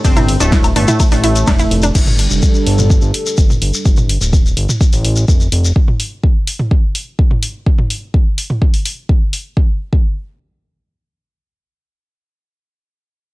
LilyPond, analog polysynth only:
\new Staff \with { instrumentName = "Analog polysynth" } { \clef bass \time 4/4 \key d \minor \tempo 4 = 126 <c c'>8 r16 <a, a>8 r16 <a, a>8 r16 <a, a>4. r16 | r1 | r1 | r1 |
r1 | r1 | r1 | }